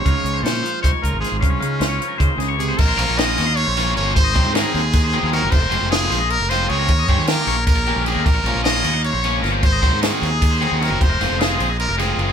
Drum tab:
CC |-------|-------|x------|-------|
RD |-------|-------|-xxxxxx|xxxxxxx|
HH |xxxxxxx|xxxxxxx|-------|-------|
SD |--o---o|--o--o-|--oo-o-|--ooo-o|
BD |o---oo-|o---o--|o------|oo--o--|

CC |x------|-------|x------|-------|
RD |-xxxxxx|xxxxxxx|-xxxxxx|xxxxxxx|
HH |-------|-------|-------|-------|
SD |--oo-o-|--oo---|--o---o|--oo--o|
BD |o------|oo--o--|o------|oo--o--|

CC |x------|
RD |-xxxxxx|
HH |-------|
SD |-oo--o-|
BD |o------|